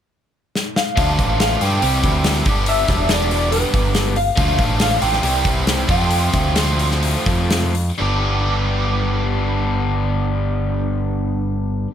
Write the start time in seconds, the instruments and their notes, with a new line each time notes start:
0.55 snare
0.76 clean electric guitar F5, snare
0.96 picked electric bass D2, overdriven electric guitar D3 F3 A3 D4, kick, open hi-hat
1.00 overdriven electric guitar F4
1.19 picked electric bass A1, kick, open hi-hat
1.40 clean electric guitar F5, snare, open hi-hat
1.60 picked electric bass G2, overdriven electric guitar D3 F3 A3 D4 F4, clean electric guitar G5, open hi-hat
1.81 picked electric bass C2, overdriven electric guitar C3 E3 G3 C4 G4, open hi-hat
1.85 overdriven electric guitar E4
2.04 picked electric bass D2, kick, open hi-hat
2.24 snare, open hi-hat
2.45 picked electric bass G1, overdriven electric guitar G2 D3 G3 B3 D4, kick, open hi-hat
2.49 overdriven electric guitar G4
2.66 clean electric guitar E5, open hi-hat
2.88 picked electric bass E1, kick, snare, open hi-hat
3.09 overdriven electric guitar G2 D3 G3 B3 D4 G4, clean electric guitar D5, snare, open hi-hat
3.31 clean electric guitar D5, open hi-hat
3.51 clean electric guitar B4, open hi-hat
3.74 picked electric bass G1, kick, open hi-hat
3.95 snare, open hi-hat
4.16 clean electric guitar F5, open hi-hat
4.36 picked electric bass D2, overdriven electric guitar D3 F3 A3 D4 F4, kick, open hi-hat
4.58 picked electric bass A1, kick, open hi-hat
4.80 clean electric guitar F5, snare, open hi-hat
5.01 picked electric bass A1, overdriven electric guitar D3 F3 A3 D4 F4, clean electric guitar G5, open hi-hat
5.13 snare
5.22 picked electric bass C2, overdriven electric guitar C3 E3 G3 C4 E4, open hi-hat
5.45 picked electric bass C2, kick, open hi-hat
5.67 snare, open hi-hat
5.87 overdriven electric guitar F2 C3 F3 A3 C4 F4, picked electric bass F2, clean electric guitar G5, kick, open hi-hat
6.11 open hi-hat
6.33 picked electric bass D2, kick, open hi-hat
6.55 overdriven electric guitar F2 C3 F3 A3 C4 F4, snare, open hi-hat
6.79 open hi-hat
6.91 snare
7.03 open hi-hat
7.26 picked electric bass F2, kick, open hi-hat
7.50 snare, open hi-hat
7.75 open hi-hat
7.98 picked electric bass G1, overdriven electric guitar G2 D3 G3 B3 D4 G4